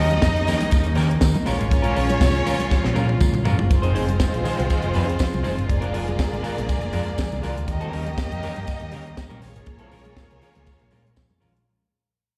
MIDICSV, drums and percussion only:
0, 0, Header, 1, 2, 480
1, 0, Start_track
1, 0, Tempo, 497100
1, 1662, Time_signature, 4, 2, 24, 8
1, 11950, End_track
2, 0, Start_track
2, 0, Title_t, "Drums"
2, 105, Note_on_c, 9, 42, 50
2, 115, Note_on_c, 9, 63, 92
2, 202, Note_off_c, 9, 42, 0
2, 211, Note_off_c, 9, 63, 0
2, 213, Note_on_c, 9, 38, 127
2, 216, Note_on_c, 9, 36, 119
2, 221, Note_on_c, 9, 54, 90
2, 232, Note_on_c, 9, 62, 41
2, 310, Note_off_c, 9, 38, 0
2, 313, Note_off_c, 9, 36, 0
2, 318, Note_off_c, 9, 54, 0
2, 328, Note_off_c, 9, 62, 0
2, 350, Note_on_c, 9, 42, 42
2, 446, Note_off_c, 9, 42, 0
2, 456, Note_on_c, 9, 46, 64
2, 463, Note_on_c, 9, 54, 68
2, 469, Note_on_c, 9, 64, 79
2, 552, Note_off_c, 9, 46, 0
2, 560, Note_off_c, 9, 54, 0
2, 565, Note_off_c, 9, 64, 0
2, 579, Note_on_c, 9, 38, 36
2, 584, Note_on_c, 9, 42, 57
2, 598, Note_on_c, 9, 63, 71
2, 676, Note_off_c, 9, 38, 0
2, 681, Note_off_c, 9, 42, 0
2, 688, Note_on_c, 9, 42, 69
2, 694, Note_off_c, 9, 63, 0
2, 699, Note_on_c, 9, 36, 126
2, 704, Note_on_c, 9, 54, 68
2, 704, Note_on_c, 9, 62, 33
2, 704, Note_on_c, 9, 64, 67
2, 785, Note_off_c, 9, 42, 0
2, 795, Note_off_c, 9, 36, 0
2, 800, Note_off_c, 9, 54, 0
2, 801, Note_off_c, 9, 62, 0
2, 801, Note_off_c, 9, 64, 0
2, 808, Note_on_c, 9, 42, 43
2, 836, Note_on_c, 9, 62, 37
2, 905, Note_off_c, 9, 42, 0
2, 920, Note_on_c, 9, 46, 63
2, 932, Note_off_c, 9, 62, 0
2, 941, Note_on_c, 9, 54, 55
2, 1016, Note_off_c, 9, 46, 0
2, 1037, Note_off_c, 9, 54, 0
2, 1072, Note_on_c, 9, 42, 44
2, 1168, Note_on_c, 9, 38, 121
2, 1169, Note_off_c, 9, 42, 0
2, 1173, Note_on_c, 9, 54, 103
2, 1176, Note_on_c, 9, 36, 114
2, 1184, Note_on_c, 9, 62, 38
2, 1265, Note_off_c, 9, 38, 0
2, 1270, Note_off_c, 9, 54, 0
2, 1272, Note_off_c, 9, 36, 0
2, 1281, Note_off_c, 9, 62, 0
2, 1296, Note_on_c, 9, 42, 45
2, 1308, Note_on_c, 9, 62, 42
2, 1308, Note_on_c, 9, 63, 94
2, 1393, Note_off_c, 9, 42, 0
2, 1405, Note_off_c, 9, 62, 0
2, 1405, Note_off_c, 9, 63, 0
2, 1410, Note_on_c, 9, 46, 53
2, 1419, Note_on_c, 9, 54, 64
2, 1506, Note_off_c, 9, 46, 0
2, 1516, Note_off_c, 9, 54, 0
2, 1551, Note_on_c, 9, 42, 52
2, 1647, Note_off_c, 9, 42, 0
2, 1654, Note_on_c, 9, 42, 80
2, 1656, Note_on_c, 9, 36, 104
2, 1665, Note_on_c, 9, 54, 34
2, 1751, Note_off_c, 9, 42, 0
2, 1752, Note_off_c, 9, 36, 0
2, 1761, Note_off_c, 9, 54, 0
2, 1775, Note_on_c, 9, 42, 46
2, 1797, Note_on_c, 9, 62, 36
2, 1872, Note_off_c, 9, 42, 0
2, 1894, Note_off_c, 9, 62, 0
2, 1896, Note_on_c, 9, 46, 77
2, 1993, Note_off_c, 9, 46, 0
2, 2023, Note_on_c, 9, 42, 51
2, 2029, Note_on_c, 9, 63, 98
2, 2119, Note_off_c, 9, 42, 0
2, 2126, Note_off_c, 9, 63, 0
2, 2133, Note_on_c, 9, 36, 127
2, 2138, Note_on_c, 9, 38, 122
2, 2140, Note_on_c, 9, 54, 89
2, 2230, Note_off_c, 9, 36, 0
2, 2235, Note_off_c, 9, 38, 0
2, 2236, Note_off_c, 9, 54, 0
2, 2269, Note_on_c, 9, 42, 46
2, 2269, Note_on_c, 9, 62, 43
2, 2365, Note_off_c, 9, 42, 0
2, 2365, Note_off_c, 9, 62, 0
2, 2381, Note_on_c, 9, 46, 63
2, 2382, Note_on_c, 9, 54, 67
2, 2382, Note_on_c, 9, 64, 72
2, 2477, Note_off_c, 9, 46, 0
2, 2479, Note_off_c, 9, 54, 0
2, 2479, Note_off_c, 9, 64, 0
2, 2501, Note_on_c, 9, 63, 71
2, 2504, Note_on_c, 9, 38, 35
2, 2509, Note_on_c, 9, 42, 62
2, 2597, Note_off_c, 9, 63, 0
2, 2600, Note_off_c, 9, 38, 0
2, 2605, Note_off_c, 9, 42, 0
2, 2618, Note_on_c, 9, 54, 65
2, 2619, Note_on_c, 9, 38, 60
2, 2620, Note_on_c, 9, 62, 33
2, 2620, Note_on_c, 9, 64, 68
2, 2621, Note_on_c, 9, 36, 110
2, 2715, Note_off_c, 9, 54, 0
2, 2716, Note_off_c, 9, 38, 0
2, 2716, Note_off_c, 9, 62, 0
2, 2716, Note_off_c, 9, 64, 0
2, 2717, Note_off_c, 9, 36, 0
2, 2747, Note_on_c, 9, 38, 61
2, 2844, Note_off_c, 9, 38, 0
2, 2857, Note_on_c, 9, 48, 68
2, 2860, Note_on_c, 9, 54, 53
2, 2954, Note_off_c, 9, 48, 0
2, 2957, Note_off_c, 9, 54, 0
2, 2986, Note_on_c, 9, 48, 63
2, 3082, Note_off_c, 9, 48, 0
2, 3095, Note_on_c, 9, 47, 104
2, 3096, Note_on_c, 9, 54, 97
2, 3100, Note_on_c, 9, 36, 108
2, 3192, Note_off_c, 9, 47, 0
2, 3192, Note_off_c, 9, 54, 0
2, 3197, Note_off_c, 9, 36, 0
2, 3222, Note_on_c, 9, 45, 85
2, 3228, Note_on_c, 9, 62, 37
2, 3228, Note_on_c, 9, 63, 92
2, 3318, Note_off_c, 9, 45, 0
2, 3325, Note_off_c, 9, 62, 0
2, 3325, Note_off_c, 9, 63, 0
2, 3335, Note_on_c, 9, 43, 109
2, 3343, Note_on_c, 9, 54, 58
2, 3432, Note_off_c, 9, 43, 0
2, 3440, Note_off_c, 9, 54, 0
2, 3466, Note_on_c, 9, 43, 101
2, 3563, Note_off_c, 9, 43, 0
2, 3579, Note_on_c, 9, 36, 111
2, 3579, Note_on_c, 9, 42, 63
2, 3586, Note_on_c, 9, 62, 35
2, 3587, Note_on_c, 9, 54, 33
2, 3676, Note_off_c, 9, 36, 0
2, 3676, Note_off_c, 9, 42, 0
2, 3683, Note_off_c, 9, 62, 0
2, 3684, Note_off_c, 9, 54, 0
2, 3701, Note_on_c, 9, 42, 47
2, 3797, Note_off_c, 9, 42, 0
2, 3819, Note_on_c, 9, 46, 67
2, 3822, Note_on_c, 9, 54, 37
2, 3916, Note_off_c, 9, 46, 0
2, 3919, Note_off_c, 9, 54, 0
2, 3945, Note_on_c, 9, 42, 51
2, 3952, Note_on_c, 9, 63, 82
2, 4042, Note_off_c, 9, 42, 0
2, 4049, Note_off_c, 9, 63, 0
2, 4053, Note_on_c, 9, 38, 127
2, 4055, Note_on_c, 9, 36, 123
2, 4059, Note_on_c, 9, 54, 98
2, 4149, Note_off_c, 9, 38, 0
2, 4152, Note_off_c, 9, 36, 0
2, 4155, Note_off_c, 9, 54, 0
2, 4190, Note_on_c, 9, 42, 47
2, 4191, Note_on_c, 9, 62, 45
2, 4286, Note_off_c, 9, 42, 0
2, 4288, Note_off_c, 9, 62, 0
2, 4299, Note_on_c, 9, 64, 76
2, 4301, Note_on_c, 9, 54, 60
2, 4303, Note_on_c, 9, 46, 62
2, 4396, Note_off_c, 9, 64, 0
2, 4398, Note_off_c, 9, 54, 0
2, 4399, Note_off_c, 9, 46, 0
2, 4430, Note_on_c, 9, 63, 66
2, 4432, Note_on_c, 9, 38, 33
2, 4437, Note_on_c, 9, 42, 59
2, 4527, Note_off_c, 9, 63, 0
2, 4528, Note_off_c, 9, 38, 0
2, 4533, Note_off_c, 9, 42, 0
2, 4537, Note_on_c, 9, 42, 60
2, 4538, Note_on_c, 9, 54, 66
2, 4543, Note_on_c, 9, 36, 105
2, 4550, Note_on_c, 9, 64, 70
2, 4634, Note_off_c, 9, 42, 0
2, 4635, Note_off_c, 9, 54, 0
2, 4640, Note_off_c, 9, 36, 0
2, 4646, Note_off_c, 9, 64, 0
2, 4657, Note_on_c, 9, 42, 40
2, 4678, Note_on_c, 9, 62, 38
2, 4754, Note_off_c, 9, 42, 0
2, 4766, Note_on_c, 9, 46, 71
2, 4775, Note_off_c, 9, 62, 0
2, 4778, Note_on_c, 9, 54, 53
2, 4863, Note_off_c, 9, 46, 0
2, 4875, Note_off_c, 9, 54, 0
2, 4919, Note_on_c, 9, 42, 47
2, 5012, Note_on_c, 9, 54, 98
2, 5015, Note_off_c, 9, 42, 0
2, 5022, Note_on_c, 9, 36, 119
2, 5025, Note_on_c, 9, 38, 110
2, 5027, Note_on_c, 9, 62, 39
2, 5108, Note_off_c, 9, 54, 0
2, 5119, Note_off_c, 9, 36, 0
2, 5122, Note_off_c, 9, 38, 0
2, 5124, Note_off_c, 9, 62, 0
2, 5146, Note_on_c, 9, 42, 39
2, 5156, Note_on_c, 9, 62, 38
2, 5156, Note_on_c, 9, 63, 85
2, 5242, Note_off_c, 9, 42, 0
2, 5253, Note_off_c, 9, 62, 0
2, 5253, Note_off_c, 9, 63, 0
2, 5256, Note_on_c, 9, 46, 54
2, 5256, Note_on_c, 9, 64, 87
2, 5263, Note_on_c, 9, 54, 66
2, 5352, Note_off_c, 9, 64, 0
2, 5353, Note_off_c, 9, 46, 0
2, 5360, Note_off_c, 9, 54, 0
2, 5392, Note_on_c, 9, 42, 54
2, 5489, Note_off_c, 9, 42, 0
2, 5499, Note_on_c, 9, 36, 108
2, 5499, Note_on_c, 9, 42, 69
2, 5596, Note_off_c, 9, 36, 0
2, 5596, Note_off_c, 9, 42, 0
2, 5618, Note_on_c, 9, 42, 45
2, 5639, Note_on_c, 9, 62, 39
2, 5715, Note_off_c, 9, 42, 0
2, 5736, Note_off_c, 9, 62, 0
2, 5737, Note_on_c, 9, 46, 69
2, 5833, Note_off_c, 9, 46, 0
2, 5868, Note_on_c, 9, 42, 48
2, 5879, Note_on_c, 9, 63, 94
2, 5965, Note_off_c, 9, 42, 0
2, 5975, Note_off_c, 9, 63, 0
2, 5975, Note_on_c, 9, 54, 86
2, 5977, Note_on_c, 9, 36, 127
2, 5984, Note_on_c, 9, 38, 123
2, 5993, Note_on_c, 9, 62, 39
2, 6072, Note_off_c, 9, 54, 0
2, 6074, Note_off_c, 9, 36, 0
2, 6080, Note_off_c, 9, 38, 0
2, 6089, Note_off_c, 9, 62, 0
2, 6115, Note_on_c, 9, 42, 45
2, 6212, Note_off_c, 9, 42, 0
2, 6218, Note_on_c, 9, 64, 79
2, 6219, Note_on_c, 9, 54, 63
2, 6223, Note_on_c, 9, 46, 55
2, 6315, Note_off_c, 9, 54, 0
2, 6315, Note_off_c, 9, 64, 0
2, 6320, Note_off_c, 9, 46, 0
2, 6351, Note_on_c, 9, 38, 37
2, 6351, Note_on_c, 9, 63, 70
2, 6356, Note_on_c, 9, 42, 61
2, 6448, Note_off_c, 9, 38, 0
2, 6448, Note_off_c, 9, 63, 0
2, 6453, Note_off_c, 9, 42, 0
2, 6457, Note_on_c, 9, 54, 60
2, 6462, Note_on_c, 9, 36, 121
2, 6462, Note_on_c, 9, 42, 65
2, 6466, Note_on_c, 9, 64, 62
2, 6554, Note_off_c, 9, 54, 0
2, 6559, Note_off_c, 9, 36, 0
2, 6559, Note_off_c, 9, 42, 0
2, 6563, Note_off_c, 9, 64, 0
2, 6577, Note_on_c, 9, 42, 44
2, 6597, Note_on_c, 9, 62, 35
2, 6674, Note_off_c, 9, 42, 0
2, 6689, Note_on_c, 9, 46, 68
2, 6694, Note_off_c, 9, 62, 0
2, 6699, Note_on_c, 9, 54, 51
2, 6785, Note_off_c, 9, 46, 0
2, 6795, Note_off_c, 9, 54, 0
2, 6840, Note_on_c, 9, 42, 39
2, 6932, Note_on_c, 9, 54, 97
2, 6936, Note_off_c, 9, 42, 0
2, 6940, Note_on_c, 9, 36, 110
2, 6943, Note_on_c, 9, 38, 114
2, 6943, Note_on_c, 9, 62, 35
2, 7029, Note_off_c, 9, 54, 0
2, 7036, Note_off_c, 9, 36, 0
2, 7039, Note_off_c, 9, 38, 0
2, 7040, Note_off_c, 9, 62, 0
2, 7067, Note_on_c, 9, 42, 46
2, 7074, Note_on_c, 9, 62, 37
2, 7074, Note_on_c, 9, 63, 87
2, 7164, Note_off_c, 9, 42, 0
2, 7170, Note_off_c, 9, 62, 0
2, 7170, Note_off_c, 9, 63, 0
2, 7177, Note_on_c, 9, 64, 84
2, 7181, Note_on_c, 9, 46, 60
2, 7184, Note_on_c, 9, 54, 65
2, 7273, Note_off_c, 9, 64, 0
2, 7277, Note_off_c, 9, 46, 0
2, 7281, Note_off_c, 9, 54, 0
2, 7314, Note_on_c, 9, 42, 54
2, 7410, Note_off_c, 9, 42, 0
2, 7415, Note_on_c, 9, 36, 95
2, 7415, Note_on_c, 9, 42, 68
2, 7427, Note_on_c, 9, 54, 31
2, 7511, Note_off_c, 9, 42, 0
2, 7512, Note_off_c, 9, 36, 0
2, 7524, Note_off_c, 9, 54, 0
2, 7540, Note_on_c, 9, 42, 43
2, 7552, Note_on_c, 9, 62, 41
2, 7637, Note_off_c, 9, 42, 0
2, 7649, Note_off_c, 9, 62, 0
2, 7659, Note_on_c, 9, 46, 78
2, 7755, Note_off_c, 9, 46, 0
2, 7786, Note_on_c, 9, 42, 50
2, 7788, Note_on_c, 9, 63, 85
2, 7883, Note_off_c, 9, 42, 0
2, 7884, Note_off_c, 9, 63, 0
2, 7896, Note_on_c, 9, 36, 123
2, 7901, Note_on_c, 9, 54, 88
2, 7902, Note_on_c, 9, 38, 125
2, 7993, Note_off_c, 9, 36, 0
2, 7997, Note_off_c, 9, 54, 0
2, 7998, Note_off_c, 9, 38, 0
2, 8032, Note_on_c, 9, 62, 39
2, 8034, Note_on_c, 9, 42, 45
2, 8128, Note_off_c, 9, 62, 0
2, 8131, Note_off_c, 9, 42, 0
2, 8141, Note_on_c, 9, 46, 57
2, 8142, Note_on_c, 9, 64, 76
2, 8144, Note_on_c, 9, 54, 64
2, 8238, Note_off_c, 9, 46, 0
2, 8239, Note_off_c, 9, 64, 0
2, 8241, Note_off_c, 9, 54, 0
2, 8263, Note_on_c, 9, 63, 67
2, 8268, Note_on_c, 9, 42, 57
2, 8359, Note_off_c, 9, 63, 0
2, 8364, Note_off_c, 9, 42, 0
2, 8374, Note_on_c, 9, 42, 67
2, 8378, Note_on_c, 9, 64, 68
2, 8381, Note_on_c, 9, 36, 118
2, 8387, Note_on_c, 9, 54, 65
2, 8471, Note_off_c, 9, 42, 0
2, 8475, Note_off_c, 9, 64, 0
2, 8477, Note_off_c, 9, 36, 0
2, 8484, Note_off_c, 9, 54, 0
2, 8493, Note_on_c, 9, 42, 36
2, 8513, Note_on_c, 9, 62, 37
2, 8589, Note_off_c, 9, 42, 0
2, 8609, Note_on_c, 9, 46, 66
2, 8610, Note_off_c, 9, 62, 0
2, 8625, Note_on_c, 9, 54, 52
2, 8705, Note_off_c, 9, 46, 0
2, 8721, Note_off_c, 9, 54, 0
2, 8758, Note_on_c, 9, 42, 37
2, 8855, Note_off_c, 9, 42, 0
2, 8858, Note_on_c, 9, 38, 112
2, 8860, Note_on_c, 9, 36, 102
2, 8861, Note_on_c, 9, 54, 86
2, 8865, Note_on_c, 9, 62, 37
2, 8954, Note_off_c, 9, 38, 0
2, 8956, Note_off_c, 9, 36, 0
2, 8957, Note_off_c, 9, 54, 0
2, 8961, Note_off_c, 9, 62, 0
2, 8982, Note_on_c, 9, 42, 39
2, 8990, Note_on_c, 9, 62, 37
2, 8990, Note_on_c, 9, 63, 80
2, 9079, Note_off_c, 9, 42, 0
2, 9086, Note_off_c, 9, 62, 0
2, 9086, Note_off_c, 9, 63, 0
2, 9095, Note_on_c, 9, 46, 60
2, 9095, Note_on_c, 9, 64, 88
2, 9110, Note_on_c, 9, 54, 58
2, 9191, Note_off_c, 9, 46, 0
2, 9192, Note_off_c, 9, 64, 0
2, 9207, Note_off_c, 9, 54, 0
2, 9229, Note_on_c, 9, 42, 49
2, 9326, Note_off_c, 9, 42, 0
2, 9331, Note_on_c, 9, 42, 73
2, 9337, Note_on_c, 9, 36, 106
2, 9351, Note_on_c, 9, 62, 32
2, 9427, Note_off_c, 9, 42, 0
2, 9433, Note_off_c, 9, 36, 0
2, 9448, Note_off_c, 9, 62, 0
2, 9450, Note_on_c, 9, 42, 45
2, 9546, Note_off_c, 9, 42, 0
2, 9575, Note_on_c, 9, 46, 78
2, 9590, Note_on_c, 9, 54, 32
2, 9672, Note_off_c, 9, 46, 0
2, 9687, Note_off_c, 9, 54, 0
2, 9705, Note_on_c, 9, 42, 53
2, 9715, Note_on_c, 9, 63, 82
2, 9801, Note_off_c, 9, 42, 0
2, 9812, Note_off_c, 9, 63, 0
2, 9816, Note_on_c, 9, 38, 127
2, 9817, Note_on_c, 9, 36, 125
2, 9828, Note_on_c, 9, 54, 89
2, 9913, Note_off_c, 9, 38, 0
2, 9914, Note_off_c, 9, 36, 0
2, 9925, Note_off_c, 9, 54, 0
2, 9951, Note_on_c, 9, 42, 49
2, 9956, Note_on_c, 9, 62, 41
2, 10048, Note_off_c, 9, 42, 0
2, 10053, Note_off_c, 9, 62, 0
2, 10058, Note_on_c, 9, 46, 62
2, 10066, Note_on_c, 9, 64, 78
2, 10070, Note_on_c, 9, 54, 56
2, 10154, Note_off_c, 9, 46, 0
2, 10162, Note_off_c, 9, 64, 0
2, 10166, Note_off_c, 9, 54, 0
2, 10185, Note_on_c, 9, 38, 36
2, 10190, Note_on_c, 9, 42, 58
2, 10193, Note_on_c, 9, 63, 65
2, 10282, Note_off_c, 9, 38, 0
2, 10287, Note_off_c, 9, 42, 0
2, 10290, Note_off_c, 9, 63, 0
2, 10299, Note_on_c, 9, 42, 60
2, 10304, Note_on_c, 9, 62, 32
2, 10304, Note_on_c, 9, 64, 65
2, 10305, Note_on_c, 9, 36, 120
2, 10309, Note_on_c, 9, 54, 69
2, 10395, Note_off_c, 9, 42, 0
2, 10401, Note_off_c, 9, 62, 0
2, 10401, Note_off_c, 9, 64, 0
2, 10402, Note_off_c, 9, 36, 0
2, 10406, Note_off_c, 9, 54, 0
2, 10420, Note_on_c, 9, 42, 42
2, 10516, Note_off_c, 9, 42, 0
2, 10531, Note_on_c, 9, 46, 61
2, 10548, Note_on_c, 9, 63, 71
2, 10549, Note_on_c, 9, 54, 49
2, 10628, Note_off_c, 9, 46, 0
2, 10645, Note_off_c, 9, 54, 0
2, 10645, Note_off_c, 9, 63, 0
2, 10686, Note_on_c, 9, 42, 41
2, 10779, Note_on_c, 9, 54, 92
2, 10783, Note_off_c, 9, 42, 0
2, 10786, Note_on_c, 9, 38, 119
2, 10788, Note_on_c, 9, 36, 112
2, 10876, Note_off_c, 9, 54, 0
2, 10883, Note_off_c, 9, 38, 0
2, 10884, Note_off_c, 9, 36, 0
2, 10915, Note_on_c, 9, 42, 38
2, 10916, Note_on_c, 9, 63, 80
2, 11012, Note_off_c, 9, 42, 0
2, 11012, Note_off_c, 9, 63, 0
2, 11024, Note_on_c, 9, 46, 54
2, 11025, Note_on_c, 9, 64, 87
2, 11031, Note_on_c, 9, 54, 53
2, 11121, Note_off_c, 9, 46, 0
2, 11121, Note_off_c, 9, 64, 0
2, 11127, Note_off_c, 9, 54, 0
2, 11167, Note_on_c, 9, 42, 56
2, 11263, Note_off_c, 9, 42, 0
2, 11950, End_track
0, 0, End_of_file